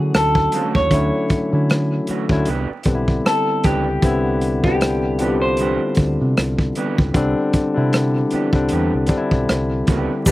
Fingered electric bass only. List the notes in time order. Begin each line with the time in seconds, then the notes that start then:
Already playing: D3
0.15 D2
0.76 D#2
0.92 D2
1.31 muted fingered electric bass stroke
1.53 D3
2.09 muted fingered electric bass stroke
2.30 D2
2.48 C2
2.70 muted fingered electric bass stroke
2.86 B1
3.65 C#2
4.03 C2
5.98 D2
6.21 C3
6.38 C2
6.99 C#2
7.15 C2
7.55 muted fingered electric bass stroke
7.77 C3
8.33 muted fingered electric bass stroke
8.54 C2
8.72 E2
8.94 C2
9.32 B1
9.50 C2
9.89 C#2
10.27 C2